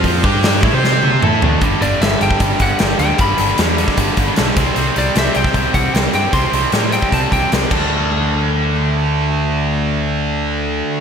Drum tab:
CC |----------------|----------------|----------------|----------------|
HH |o---o-----------|x-x-x-x-x-x-x-x-|x-x-x-x-x-x-x-x-|x-x-x-x-x-x-x-x-|
SD |----o---o-------|----o-------o-o-|----o--o----o-o-|----o--o----o-o-|
T1 |----------o-----|----------------|----------------|----------------|
T2 |------------o---|----------------|----------------|----------------|
FT |--------------o-|----------------|----------------|----------------|
BD |o-o---o---------|o------oo-o-----|o------oo-o---o-|-------oo-o-----|

CC |--------------x-|----------------|----------------|
HH |x-x-x-x-x-x-x---|----------------|----------------|
SD |----o-------o---|----------------|----------------|
T1 |----------------|----------------|----------------|
T2 |----------------|----------------|----------------|
FT |----------------|----------------|----------------|
BD |o------oo-o---o-|----------------|----------------|